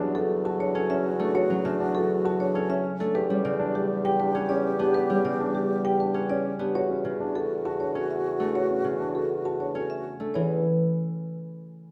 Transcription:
Already playing: E2 C#3 F#3 C#4 F#4
0.00 D4
0.15 F#4 A4
0.45 F#4 A5
0.60 D4 C#5
0.75 C#4 A4
0.90 C#4 E5
1.19 A3 D4 A4
1.35 F#4 C#5
1.50 F#3 C#4
1.65 C#3 D4 E5
1.80 D4
1.95 F#4 A4
2.25 F#4 A5
2.40 D4 C#5
2.55 C#4 A4
2.69 C#4 E5
3.00 A3 D4 A4
3.14 E2 G4 B4
3.29 G3 C#4
3.45 C#3 D5
3.59 D4
3.74 G4
4.04 G4 G5
4.19 D4 B4
4.35 C#4 B4
4.49 C#4 D5
4.79 B3 D4 G4
4.94 G4 B4
5.10 G3 C#4
5.24 C#3 D5
5.40 D4
5.55 G4
5.85 G4 G5
6.00 D4 B4
6.14 C#4 B4
6.30 C#4 D5
6.59 B3 D4 G4
6.74 E2 F#4 C#5
6.90 C#4
7.05 C#3
7.20 D4
7.35 F#4 A4
7.65 F#4 A5
7.80 D4 C#5
7.95 C#4 A4
8.11 E5
8.40 A3 D4 A4
8.55 F#4 C#5
8.70 C#4
8.84 C#3
9.00 D4
9.15 F#4 A4
9.45 F#4 A5
9.60 D4 C#5
9.75 C#4 A4
9.90 E5
10.20 A3 D4 A4
10.34 E2 E3 E4 C#5

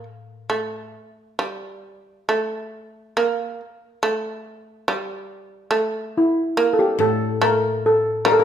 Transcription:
Already playing: A2
0.50 A3
1.39 G3
2.29 A3
3.17 A#3
4.03 A3
4.88 G3
5.71 A3
6.17 E4
6.57 A#3
6.73 A4
6.79 G4
6.99 A2 A4
7.41 A3 A#4
7.86 A4
8.25 G3 A#4
8.32 A4
8.39 A#4

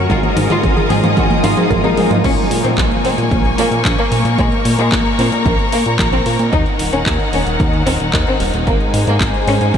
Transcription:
Already playing: A#4
0.10 G#1 G#3 A#3 D#4 F4 A#4 D#5 G#5 D#6, kick, closed hi-hat, mid tom
0.23 A#3, closed hi-hat, mid tom
0.37 G#2 D#4, open hi-hat, mid tom
0.50 G#2 F4 G#4, closed hi-hat, mid tom
0.63 G#1 A#4, kick, closed hi-hat, mid tom
0.77 G#4, closed hi-hat, mid tom
0.90 G#2 G#3 A#3 D#4 G#4 C5, open hi-hat, mid tom
1.04 G#2 A#3, closed hi-hat, mid tom
1.17 G#1 G#3 F#4, kick, closed hi-hat, mid tom
1.30 A#3, closed hi-hat, mid tom
1.44 G#2 G#3 A#3 D#4 F4 A#4, open hi-hat, mid tom
1.57 G#2 G#4, closed hi-hat, mid tom
1.70 G#1 A#4, kick, closed hi-hat, mid tom
1.84 G#3 A#3 D#4 G#4 A#4, closed hi-hat, mid tom
1.97 G#2 D#4, open hi-hat, mid tom
2.11 G#2 A#3, closed hi-hat, mid tom
2.24 A#1 A#3 C#4 A#4 G#5 C#6, kick, closed hi-hat, crash
2.38 closed hi-hat
2.51 A#2, open hi-hat
2.64 A#2 C4, closed hi-hat
2.78 A#1, kick, clap, closed hi-hat
2.91 closed hi-hat
3.05 A#2 C4, open hi-hat
3.18 A#2, closed hi-hat
3.31 A#1, kick, closed hi-hat
3.45 closed hi-hat
3.58 A#2 A#3, open hi-hat
3.71 A#2, closed hi-hat
3.85 A#1, kick, clap, closed hi-hat
3.98 A#3, closed hi-hat
4.12 A#2, open hi-hat
4.25 A#2, closed hi-hat
4.38 A#1 G#3 A#5, kick, closed hi-hat
4.52 closed hi-hat
4.65 A#2, open hi-hat
4.78 A#2 G#3, closed hi-hat
4.92 A#1, kick, clap, closed hi-hat
5.06 closed hi-hat
5.19 A#2 C4, open hi-hat
5.32 A#2, closed hi-hat
5.45 A#1 A#3, kick, closed hi-hat
5.59 closed hi-hat
5.72 A#2 A#3, open hi-hat
5.86 A#2, closed hi-hat
5.99 A#1, kick, clap, closed hi-hat
6.12 C4, closed hi-hat
6.26 A#2, open hi-hat
6.39 A#2, closed hi-hat
6.52 D#2 D#3 D#4 F#5, kick, closed hi-hat
6.66 closed hi-hat
6.79 D#1, open hi-hat
6.92 D#1 C#4, closed hi-hat
7.06 D#2, kick, clap, closed hi-hat
7.20 closed hi-hat
7.33 D#1 C#4, open hi-hat
7.46 D#1, closed hi-hat
7.60 D#2, kick, closed hi-hat
7.73 closed hi-hat
7.87 D#1 C4, open hi-hat
8.00 D#1, closed hi-hat
8.13 D#2, kick, clap, closed hi-hat
8.26 C4, closed hi-hat
8.40 D#1, open hi-hat
8.54 D#1, closed hi-hat
8.67 G#1 G#3 A#3 C5 G#5, kick, closed hi-hat
8.80 closed hi-hat
8.94 G#2, open hi-hat
9.07 G#2 A#3, closed hi-hat
9.21 G#1, kick, clap, closed hi-hat
9.34 closed hi-hat
9.47 G#2 C#4, open hi-hat
9.61 G#2, closed hi-hat
9.74 G#1 C4, kick, closed hi-hat

